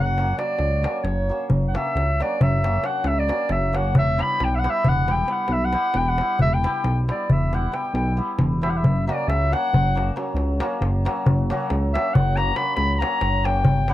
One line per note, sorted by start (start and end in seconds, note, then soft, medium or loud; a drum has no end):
0.00 0.33 F#1 medium
0.00 0.16 F#3 medium
0.00 0.35 F#5 medium
0.18 0.36 F#3 medium
0.18 0.31 A#3 medium
0.18 0.32 C#4 medium
0.18 0.32 F#4 medium
0.18 darbuka tek medium
0.38 0.82 F#3 soft
0.38 0.52 A#3 soft
0.38 0.52 C#4 soft
0.38 0.52 F#4 medium
0.38 0.99 D5 medium
0.38 darbuka tek medium
0.59 0.87 C#2 medium
0.59 darbuka tek medium
0.83 1.28 F#3 medium
0.83 0.97 A#3 medium
0.83 0.97 C#4 medium
0.83 0.98 F#4 medium
0.83 darbuka tek medium
0.99 1.05 D5 medium
1.04 1.31 F#1 medium
1.04 1.50 C#5 medium
1.04 darbuka tek medium
1.29 1.73 F#3 medium
1.29 1.43 A#3 medium
1.29 1.43 C#4 soft
1.29 1.43 F#4 medium
1.40 darbuka tek soft
1.50 1.77 F#1 medium
1.50 darbuka dum medium
1.68 1.77 F#5 medium
1.74 2.18 F#3 medium
1.74 1.87 A#3 medium
1.74 1.88 C#4 medium
1.74 1.88 F#4 medium
1.74 2.23 E5 medium
1.74 darbuka tek medium
1.86 darbuka tek soft
1.95 2.23 C#2 medium
1.95 darbuka tek medium
2.20 2.62 F#3 medium
2.20 2.34 A#3 medium
2.20 2.33 C#4 medium
2.20 2.34 F#4 medium
2.20 2.44 D5 medium
2.20 darbuka tek medium
2.41 2.79 F#1 loud
2.41 2.87 E5 loud
2.41 darbuka dum loud
2.64 2.82 F#3 medium
2.64 2.77 A#3 medium
2.64 2.77 C#4 soft
2.64 2.78 F#4 medium
2.64 darbuka tek medium
2.83 3.27 F#3 medium
2.83 2.97 A#3 soft
2.83 2.97 C#4 medium
2.83 2.97 F#4 medium
2.83 3.09 F#5 medium
2.83 darbuka tek medium
3.04 3.32 C#2 medium
3.04 3.20 E5 medium
3.04 darbuka tek medium
3.19 3.53 D5 loud
3.28 3.72 F#3 medium
3.28 3.42 A#3 medium
3.28 3.42 C#4 medium
3.28 3.43 F#4 medium
3.28 darbuka tek medium
3.49 3.96 F#1 medium
3.49 3.78 E5 medium
3.49 darbuka tek medium
3.73 4.00 F#3 medium
3.73 3.87 A#3 medium
3.73 3.87 C#4 medium
3.73 3.87 F#4 medium
3.73 3.96 F#5 medium
3.73 darbuka tek medium
3.85 darbuka tek soft
3.95 4.22 E1 medium
3.95 4.23 E5 loud
3.95 darbuka dum loud
4.07 darbuka tek soft
4.18 4.63 G3 medium
4.18 4.32 B3 medium
4.18 4.33 E4 medium
4.18 4.33 G4 medium
4.18 4.46 B5 loud
4.18 darbuka tek medium
4.30 darbuka tek soft
4.40 4.68 B1 medium
4.40 4.56 G5 medium
4.40 darbuka tek medium
4.55 4.61 E5 medium
4.59 4.72 F#5 medium
4.64 5.06 G3 medium
4.64 4.78 B3 medium
4.64 4.78 E4 medium
4.64 4.78 G4 medium
4.64 darbuka tek medium
4.70 4.90 E5 loud
4.84 5.24 E1 medium
4.84 darbuka dum medium
4.89 5.13 F#5 medium
5.07 5.26 G3 medium
5.07 5.21 B3 medium
5.07 5.21 E4 soft
5.07 5.22 G4 medium
5.07 darbuka tek medium
5.12 5.30 G5 medium
5.27 5.71 G3 soft
5.27 5.41 B3 medium
5.27 5.41 E4 medium
5.27 5.42 G4 medium
5.27 darbuka tek medium
5.32 5.54 F#5 medium
5.48 5.76 B1 medium
5.48 darbuka tek medium
5.53 5.66 E5 medium
5.65 5.98 F#5 loud
5.73 6.18 G3 medium
5.73 5.86 B3 medium
5.73 5.87 E4 medium
5.73 5.87 G4 medium
5.73 darbuka tek medium
5.94 6.22 E1 medium
5.94 6.10 G5 medium
5.94 darbuka tek medium
6.09 6.41 F#5 loud
6.18 6.62 G3 medium
6.18 6.32 B3 medium
6.18 6.33 E4 medium
6.18 6.33 G4 medium
6.18 darbuka tek medium
6.30 darbuka tek soft
6.39 6.67 E1 medium
6.39 6.55 E5 loud
6.39 darbuka dum medium
6.54 6.98 G5 medium
6.63 7.07 G3 medium
6.63 6.77 B3 medium
6.63 6.78 E4 medium
6.63 6.78 G4 medium
6.63 darbuka tek medium
6.84 7.12 B1 medium
6.84 darbuka tek medium
6.98 darbuka tek soft
7.08 7.52 G3 medium
7.08 7.22 B3 medium
7.08 7.22 E4 medium
7.08 7.23 G4 medium
7.08 7.33 D5 medium
7.08 darbuka tek medium
7.30 7.68 E1 medium
7.30 7.56 E5 medium
7.30 darbuka dum medium
7.53 7.71 G3 medium
7.53 7.66 B3 soft
7.53 7.66 E4 medium
7.53 7.66 G4 medium
7.53 7.76 F#5 medium
7.53 darbuka tek medium
7.72 8.16 G3 medium
7.72 7.86 B3 soft
7.72 7.86 E4 medium
7.72 7.86 G4 medium
7.72 7.94 G5 medium
7.72 darbuka tek medium
7.85 darbuka tek soft
7.94 8.21 B1 medium
7.94 8.17 G5 medium
7.94 darbuka tek medium
8.07 darbuka tek soft
8.17 8.60 G3 medium
8.17 8.30 B3 medium
8.17 8.31 E4 medium
8.17 8.31 G4 medium
8.38 8.85 E1 medium
8.38 darbuka tek medium
8.38 darbuka dum medium
8.52 darbuka tek soft
8.61 8.89 G3 medium
8.61 8.75 B3 medium
8.61 8.76 E4 medium
8.61 8.76 G4 medium
8.61 8.71 E5 medium
8.61 darbuka tek medium
8.70 8.78 F#5 medium
8.74 9.07 E5 medium
8.74 darbuka tek soft
8.83 9.10 F#1 medium
8.83 darbuka dum medium
8.96 darbuka tek soft
9.07 9.51 F#3 medium
9.07 9.21 A#3 medium
9.07 9.21 C#4 medium
9.07 9.22 F#4 medium
9.07 9.30 D5 medium
9.07 darbuka tek medium
9.19 darbuka tek soft
9.28 9.55 C#2 loud
9.28 9.54 E5 medium
9.28 darbuka tek medium
9.52 9.94 F#3 medium
9.52 9.66 A#3 medium
9.52 9.66 C#4 medium
9.52 9.66 F#4 medium
9.52 10.16 F#5 loud
9.52 darbuka tek medium
9.73 10.11 F#1 medium
9.73 darbuka dum medium
9.95 10.15 F#3 medium
9.95 10.08 A#3 medium
9.95 10.09 C#4 medium
9.95 10.09 F#4 medium
9.95 darbuka tek medium
10.16 10.59 F#3 medium
10.16 10.29 A#3 soft
10.16 10.29 C#4 medium
10.16 10.29 F#4 medium
10.16 darbuka tek medium
10.34 10.62 C#2 medium
10.34 darbuka tek medium
10.60 11.04 F#3 medium
10.60 10.74 A#3 medium
10.60 10.74 C#4 medium
10.60 10.74 F#4 medium
10.60 darbuka tek medium
10.81 11.08 F#1 loud
10.81 darbuka tek medium
11.05 11.49 F#3 medium
11.05 11.19 A#3 medium
11.05 11.19 C#4 medium
11.05 11.19 F#4 medium
11.05 darbuka tek medium
11.16 darbuka tek soft
11.26 11.53 F#1 medium
11.26 darbuka dum loud
11.38 darbuka tek soft
11.50 11.93 F#3 medium
11.50 11.63 A#3 medium
11.50 11.64 C#4 medium
11.50 11.64 F#4 medium
11.50 darbuka tek medium
11.60 darbuka tek soft
11.70 11.97 C#2 medium
11.70 darbuka tek medium
11.94 12.36 F#3 medium
11.94 12.08 A#3 medium
11.94 12.08 C#4 medium
11.94 12.08 F#4 medium
11.94 12.15 E5 loud
11.94 darbuka tek medium
12.14 12.53 F#1 loud
12.14 12.38 F#5 loud
12.14 darbuka dum loud
12.36 12.55 F#3 medium
12.36 12.50 A#3 medium
12.36 12.50 C#4 medium
12.36 12.51 F#4 medium
12.36 12.57 A#5 loud
12.36 darbuka tek medium
12.56 12.99 F#3 medium
12.56 12.70 A#3 soft
12.56 12.70 C#4 medium
12.56 12.70 F#4 medium
12.56 12.75 B5 loud
12.56 darbuka tek medium
12.76 13.04 C#2 medium
12.76 12.94 B5 loud
12.76 darbuka tek medium
12.94 13.00 B5 medium
12.99 13.43 F#3 medium
12.99 13.14 A#3 medium
12.99 13.14 C#4 medium
12.99 13.14 F#4 medium
12.99 13.47 A#5 loud
12.99 darbuka tek medium
13.21 13.67 F#1 medium
13.21 darbuka tek medium
13.44 13.71 F#3 medium
13.44 13.58 A#3 medium
13.44 13.58 C#4 medium
13.44 13.58 F#4 medium
13.44 13.92 G5 medium
13.44 darbuka tek medium
13.56 darbuka tek soft
13.64 13.92 G1 medium
13.64 darbuka dum loud
13.77 darbuka tek soft
13.88 13.94 G3 medium
13.88 13.94 B3 medium
13.88 13.94 D4 medium
13.88 13.94 G4 medium
13.88 13.94 F#5 medium
13.88 darbuka tek medium